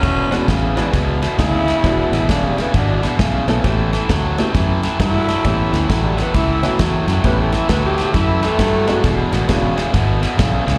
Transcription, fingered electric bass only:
X:1
M:4/4
L:1/8
Q:"Swing" 1/4=133
K:A
V:1 name="Fingered electric bass" clef=bass
E,,,2 A,,,2 C,,2 D,,2 | E,,, A,,, E,,,2 G,,,2 B,,, B,,, | A,,,2 D,,2 F,,2 =G,,2 | A,,, D,, A,,,2 C,,2 E,, F,, |
A,,,2 D,,2 F,,2 =G,,2 | E,,, A,,, E,,,2 G,,,2 B,,, C,, |]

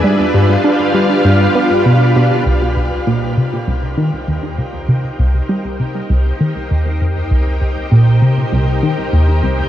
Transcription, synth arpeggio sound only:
X:1
M:4/4
L:1/8
Q:1/4=99
K:Gmix
V:1 name="Synth arpeggio sound" clef=bass
G, G,, D G, G,, B, B,, B,, | [K:Cm] C,, C,, B,, C, C,, E, E,, C,, | C, C,, G, C, C,, E, E,, F,, | C,, C,, B,, C, C,, E, E,, C,, |]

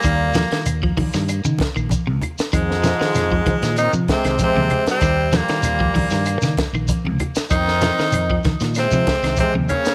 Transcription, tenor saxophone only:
X:1
M:4/4
L:1/16
Q:1/4=96
K:Fm
V:1 name="Tenor saxophone"
B,4 z12 | A,8 E2 C2 C3 C- | C2 B,8 z6 | E6 z2 C4 C2 D2 |]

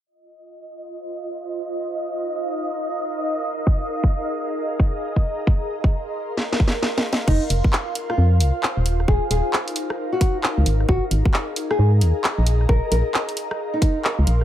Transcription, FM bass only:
X:1
M:4/4
L:1/16
Q:"Swing 16ths" 1/4=133
K:Fm
V:1 name="FM bass" clef=bass
z16 | z16 | z16 | z16 |
F,,, z F,,, z4 z F,,2 C,, z2 E,,,3 | E,,, z E,,, z8 z2 D,, A,,,2 | A,,, z A,,, z4 z A,,2 E,, z2 B,,,3 | B,,, z B,,, z8 z2 D,, B,,, F,,, |]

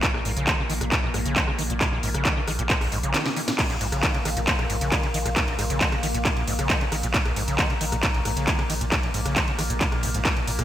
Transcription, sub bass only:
X:1
M:4/4
L:1/16
Q:1/4=135
K:Bbm
V:1 name="Sub bass" clef=bass
z2 B,,, B,,, z2 B,,, B,,, z2 B,,, B,,, z2 B,,, B,,, | z2 B,,, B,,, z2 B,,, B,,, z2 B,,, B,,, z4 | z2 B,,, B,,, z2 B,,, B,,, z2 B,,, B,,, z2 B,,, B,,, | z2 B,,, B,,, z2 B,,, B,,, z2 B,,, B,,, z2 B,,, B,,, |
z2 B,,, B,,, z2 B,,, B,,, z2 B,,, B,,, z2 B,,, B,,, | z2 B,,, B,,, z2 B,,, B,,, z2 B,,, B,,, z2 B,,, B,,, |]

